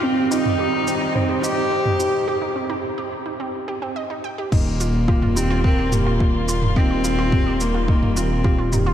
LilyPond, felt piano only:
\new Staff \with { instrumentName = "Felt piano" } { \time 4/4 \key ees \major \tempo 4 = 107 c'8 ees'8 r8 c'8 c''8 ees''8 c''8 g'8 | r1 | ees'8 r8 f'8 g'8 bes'8 g'8 f'8 r8 | ees'8 f'8 g'8 bes'8 ees'8 r8 f'8 g'8 | }